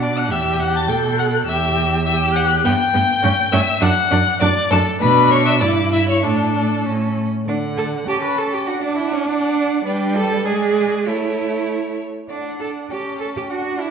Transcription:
Already playing: cello B2, viola D4
0.02 violin D5 D6
0.17 violin F#5 F#6
0.30 cello E2, viola G4, violin E5 E6
0.60 violin F#5 F#6
0.75 violin A5 A6
0.89 cello B2, viola A4, violin G5 G6
1.18 violin F#5 F#6
1.46 cello E2, viola G4, violin E5 E6
2.05 viola G4, violin E5 E6
2.34 violin F#5 F#6
2.64 cello G2, viola B3, violin G5 G6
2.94 cello G2, viola B3
3.23 cello G2, viola C#4
3.52 cello G2, viola C#4, violin E5 E6
3.81 cello F#2, viola D4, violin F#5 F#6
4.11 cello F#2, viola D4
4.41 cello F#2, viola D4, violin D5 D6
4.70 cello F#2, viola D4, violin A4 A5
5.00 cello B2, viola D4, violin B4 B5
5.30 violin C#5 C#6
5.45 violin E5 E6
5.60 cello G2, viola E4, violin D5 D6
5.92 violin E5 E6
6.09 violin C#5 C#6
6.23 cello A2, viola D4, violin A4 A5
6.85 cello A2, viola C#4
7.47 viola D3, cello D4, violin D5 F#5
7.77 cello A4, violin A5
8.07 viola C#4, cello G4, violin G5 A5
8.23 cello B4, violin B5
8.38 cello A4, violin A5
8.52 cello G4, violin G5
8.67 viola D4, cello F#4, violin F#5
8.81 cello D4, violin D5
8.96 cello E4, violin E5
9.12 cello C#4, violin C#5
9.26 cello D4, violin D5 F#5
9.85 viola G3, cello D4, violin B4 D5
10.15 cello A4, violin A5
10.45 viola G#3, cello G#4, violin D5 G#5
11.06 viola A3, cello E4, violin C#5 E5
12.29 cello D4, viola D4, violin D5 F#5
12.60 cello A4, violin A5
12.90 viola C#4, cello G4, violin G5 A5
13.20 cello A4, violin A5
13.37 cello G4, violin G5
13.50 viola D4, cello F#4, violin F#5
13.80 cello E4, violin E5

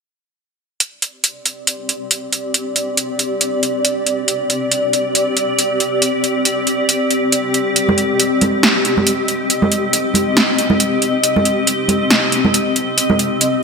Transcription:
0.80 ambient pad C4 G4 D5, closed hi-hat
1.02 closed hi-hat
1.24 closed hi-hat
1.46 closed hi-hat
1.67 closed hi-hat
1.89 closed hi-hat
2.11 closed hi-hat
2.33 closed hi-hat
2.54 closed hi-hat
2.76 closed hi-hat
2.97 closed hi-hat
3.19 closed hi-hat
3.41 closed hi-hat
3.63 closed hi-hat
3.85 closed hi-hat
4.06 closed hi-hat
4.28 closed hi-hat
4.50 closed hi-hat
4.72 closed hi-hat
4.93 closed hi-hat
5.15 closed hi-hat
5.37 closed hi-hat
5.59 closed hi-hat
5.80 closed hi-hat
6.02 closed hi-hat
6.24 closed hi-hat
6.45 closed hi-hat
6.67 closed hi-hat
6.89 closed hi-hat
7.11 closed hi-hat
7.32 closed hi-hat
7.54 closed hi-hat
7.75 ambient pad D#5, closed hi-hat
7.89 high conga
7.98 closed hi-hat
8.20 closed hi-hat
8.41 closed hi-hat, high conga
8.63 snare, closed hi-hat
8.85 closed hi-hat
8.97 high conga
9.07 closed hi-hat
9.28 closed hi-hat
9.50 closed hi-hat
9.62 high conga
9.72 closed hi-hat
9.93 closed hi-hat
10.14 closed hi-hat, high conga
10.37 snare, closed hi-hat
10.58 closed hi-hat
10.70 high conga
10.80 closed hi-hat
11.02 closed hi-hat
11.23 closed hi-hat
11.36 high conga
11.45 closed hi-hat
11.67 closed hi-hat
11.88 closed hi-hat, high conga
12.11 snare, closed hi-hat
12.32 closed hi-hat
12.45 high conga
12.54 closed hi-hat
12.76 closed hi-hat
12.98 closed hi-hat
13.10 high conga
13.19 closed hi-hat
13.41 closed hi-hat

